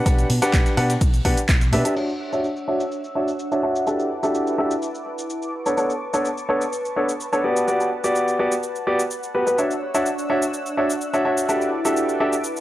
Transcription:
0.06 fingered electric bass B1, grand piano D4 G4 B4 F#5, kick, closed hi-hat, shaker
0.18 closed hi-hat, shaker
0.30 fingered electric bass B2, closed hi-hat, open hi-hat
0.42 grand piano D4 G4 B4 F#5, snare, closed hi-hat, shaker
0.53 fingered electric bass B1, kick, snare, clap, closed hi-hat, shaker
0.66 snare, closed hi-hat, shaker
0.77 fingered electric bass B2, grand piano D4 G4 B4 F#5, closed hi-hat, open hi-hat
0.89 snare, closed hi-hat, shaker
1.01 fingered electric bass B1, kick, closed hi-hat, open hi-hat, shaker
1.14 closed hi-hat, shaker
1.25 fingered electric bass B2, grand piano D4 G4 B4 F#5, kick, closed hi-hat, open hi-hat
1.37 closed hi-hat, shaker
1.49 fingered electric bass B1, kick, snare, clap, closed hi-hat, shaker
1.61 snare, closed hi-hat, shaker
1.73 fingered electric bass B2, grand piano D4 G4 B4 E5, closed hi-hat, open hi-hat
1.85 grand piano D4 G4 B4 E5, closed hi-hat, shaker
1.96 grand piano D4 F#4 C#5, analog synth pad D4 C#5 F#5 E6, crash, shaker
2.09 shaker
2.33 grand piano D4 F#4 C#5 E5, shaker
2.44 shaker
2.57 shaker
2.68 grand piano D4 F#4 C#5 E5
2.80 shaker
2.92 shaker
3.04 shaker
3.15 grand piano D4 F#4 C#5 E5
3.28 shaker
3.39 shaker
3.52 grand piano D4 F#4 C#5 E5, shaker
3.63 grand piano D4 F#4 C#5 E5
3.76 shaker
3.87 grand piano D4 F#4 G4 A4 E5, analog synth pad E4 B4 E5 A5 D6, shaker
4.00 shaker
4.23 grand piano D4 F#4 G4 A4 E5, shaker
4.35 shaker
4.47 shaker
4.58 grand piano D4 F#4 G4 A4 E5
4.71 shaker
4.82 shaker
4.95 shaker
5.18 shaker
5.30 shaker
5.42 shaker
5.54 analog synth pad B4 C#6
5.66 grand piano B3 D4 A4 C#5, shaker
5.77 grand piano B3 D4 A4 C#5, shaker
5.90 shaker
6.14 grand piano B3 D4 A4 C#5, shaker
6.25 shaker
6.38 shaker
6.49 grand piano B3 D4 A4 C#5
6.61 shaker
6.73 shaker
6.85 shaker
6.96 grand piano B3 D4 A4 C#5
7.09 shaker
7.20 shaker
7.33 grand piano B3 D4 A4 C#5, shaker
7.44 grand piano B3 F#4 G4 D5, analog synth pad F#5
7.57 shaker
7.68 grand piano B3 F#4 G4 D5, shaker
7.80 shaker
8.04 grand piano B3 F#4 G4 D5, shaker
8.16 shaker
8.28 shaker
8.39 grand piano B3 F#4 G4 D5
8.52 shaker
8.63 shaker
8.76 shaker
8.87 grand piano B3 F#4 G4 D5
8.99 shaker
9.11 shaker
9.23 shaker
9.35 grand piano B3 F#4 G4 B4
9.47 grand piano B3 F#4 G4 B4, shaker
9.58 grand piano D4 F#4 C#5 E5, analog synth pad D4 C#5 E6, shaker
9.71 shaker
9.94 grand piano D4 F#4 C#5 E5, shaker
10.06 shaker
10.18 shaker
10.30 grand piano D4 F#4 C#5 E5
10.42 shaker
10.54 shaker
10.66 shaker
10.77 grand piano D4 F#4 C#5 E5
10.90 shaker
11.01 shaker
11.14 grand piano D4 F#4 C#5 E5, shaker
11.25 grand piano D4 F#4 C#5 E5
11.38 shaker
11.49 grand piano D4 F#4 G4 A4 E5, analog synth pad E4 B4 E5 A5 D6, shaker
11.61 shaker
11.85 grand piano D4 F#4 G4 A4 E5, shaker
11.97 shaker
12.09 shaker
12.20 grand piano D4 F#4 G4 A4 E5
12.33 shaker
12.44 shaker
12.56 shaker

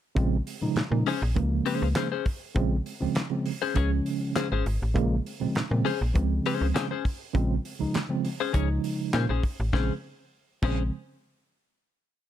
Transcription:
0.15 fm bass A#1, tine electric piano C#3 F3 G#3 C4, kick, closed hi-hat
0.46 tine electric piano G#3 C4, open hi-hat
0.61 fm bass A#2, tine electric piano C#3 F3 G#3 D#4
0.76 fm bass A#2, snare, clap, closed hi-hat
0.91 fm bass A#2, tine electric piano C#3 F3 G#3 D#4
1.06 clean electric guitar C#4 G#4 C5, open hi-hat
1.21 fm bass A#1, tine electric piano G#3 C4
1.35 fm bass C#2, tine electric piano C#3 F3 G#3 A#3, kick, closed hi-hat
1.66 clean electric guitar C#4 G#4 C5, open hi-hat
1.82 fm bass C#2
1.95 clean electric guitar C#4 G#4 C5, snare, clap, closed hi-hat
2.12 clean electric guitar C#4 G#4 C5
2.26 kick, open hi-hat
2.55 fm bass A#1, tine electric piano C#3 F3 G#3 C4, kick, closed hi-hat
2.85 tine electric piano G#3 C4, open hi-hat
3.00 fm bass C#2, tine electric piano C#3 F3 G#3 C4
3.15 snare, clap, closed hi-hat
3.30 tine electric piano C#3 F3 G#3 C4
3.46 open hi-hat
3.62 tine electric piano C4, clean electric guitar C#4 G#4 C5
3.74 fm bass C#2, tine electric piano C#3 F3 G#3 C#4, clean electric guitar C#4 G#4 C#5, kick, closed hi-hat
4.06 open hi-hat
4.36 clean electric guitar C#4 G#4 C5, snare, clap, closed hi-hat
4.52 fm bass G#1, clean electric guitar C#4 G#4 C5
4.66 fm bass G#1, open hi-hat
4.82 fm bass A1
4.94 fm bass A#1, tine electric piano C#3 F3 G#3 A#3, kick, closed hi-hat
5.26 open hi-hat
5.40 fm bass A#2, tine electric piano C#3 F3 G#3 C4
5.55 fm bass A#2, snare, clap, closed hi-hat
5.70 fm bass A#2, tine electric piano C#3 F3 G#3 C4
5.85 clean electric guitar C#4 G#4 C5, open hi-hat
6.00 fm bass A#1, tine electric piano G#3 A#3
6.14 fm bass C#2, tine electric piano C#3 F3 G#3 C4, kick, closed hi-hat
6.46 clean electric guitar C#4 G#4 C5, open hi-hat
6.61 fm bass C#2
6.74 clean electric guitar C#4 G#4 C5, snare, clap, closed hi-hat
6.91 clean electric guitar C#4 G#4 C5
7.05 kick, open hi-hat
7.34 fm bass A#1, tine electric piano C#3 F3 G#3 C4, kick, closed hi-hat
7.65 open hi-hat
7.79 fm bass C#2, tine electric piano C#3 F3 G#3 D#4
7.94 snare, clap, closed hi-hat
8.09 tine electric piano C#3 F3 G#3 C4
8.25 open hi-hat
8.39 tine electric piano G#3 C4, clean electric guitar C#4 G#4 C5
8.53 fm bass C#2, tine electric piano C#3 F3 G#3 D#4, clean electric guitar C#4 G#4 C#5, kick, closed hi-hat
8.84 open hi-hat
9.13 fm bass A#2, clean electric guitar C#4 G#4 C5, snare, clap, closed hi-hat
9.29 fm bass A#1, clean electric guitar C#4 G#4 C5
9.43 kick, open hi-hat
9.60 fm bass A1
9.73 fm bass A#1, tine electric piano C#3 F3 G#3 C4, clean electric guitar C#4 G#4 C5, kick, snare
10.62 fm bass A#1, tine electric piano C#3 F3 G#3 C4, clean electric guitar C#4 G#4 C5, kick, crash

